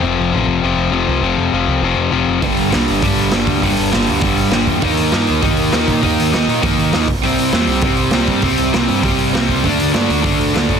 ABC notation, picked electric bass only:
X:1
M:4/4
L:1/8
Q:1/4=200
K:Clyd
V:1 name="Picked electric bass" clef=bass
=F,,, F,,, A,,, F,,, F,,, F,,, F,,, C,, | =F,,, F,,, F,,, C,, F,,, F,,, F,,, F,,, | G,,, G,,, C,, G,,, G,,, G,,, G,,, D,, | G,,, G,,, G,,, D,, G,,, G,,, G,,, E,, |
_E,, E,, G,, E,, E,, E,, E,, _B,, | _E,, E,, E,, _B,, E,, E,, E,, C,, | C,, C,, E,, C,, C,, C,, C,, G,, | C,, C,, C,, G,, C,, C,, C,, C,, |
D,, D,, G,, D,, D,, D,, D,, A,, |]